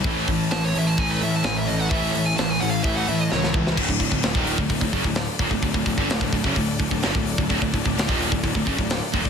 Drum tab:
CC |----------------|----------------|x---------------|----------------|
HH |o-o-o-o-o-o-o-o-|o-o-o-o-o-o-----|--o-o-o-o-o-o-o-|o-o-o-o-o-o-o-o-|
SD |----o-------o---|----o-------oo-o|----o-------o---|----o-------o---|
BD |o-o-----o-------|o-------o-----o-|oooo-o-ooooo--oo|oooo-oooo-oo-o-o|

CC |----------------|
HH |o-o-o-o-o-o-o-o-|
SD |----o-------o---|
BD |oooo-o-ooooo--oo|